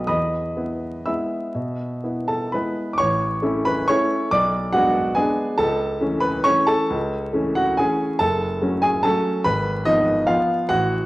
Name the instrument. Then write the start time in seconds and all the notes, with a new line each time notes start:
grand piano
Already playing: B3 F#4
0.07 E2 D#5 B5 D#6
0.57 B3 E4
1.06 G#3 B3 E4 E5 B5 E6
1.55 B2
2.04 B3 E4
2.28 A4 A5
2.52 G#3 B3 E4 B4 B5
2.93 D6
2.98 A1 C#5 C#6
3.42 A3 C#4 E4
3.65 B4 B5
3.87 A3 C#4 E4 C#5 C#6
4.31 B1 D5 D6
4.72 G#3 B3 D4 F#4 F#5
5.15 G#3 B3 D4 G#4 G#5
5.58 C#2 A4 A5
6.01 E3 A3 C#4
6.21 B4 B5
6.44 E3 A3 C#4 C#5 C#6
6.67 A4 A5
6.90 C#2
7.33 E3 A3 C#4
7.55 F#4 F#5
7.77 E3 A3 C#4 G#4 G#5
8.19 F#1 A4 A5
8.62 F#3 A3 C#4
8.82 G#4 G#5
9.03 F#3 A3 C#4 A4 A5
9.44 G#1 B4 B5
9.85 F3 B3 D#4 D#5
10.27 F3 B3 F4 F5
10.69 A1 F#4 F#5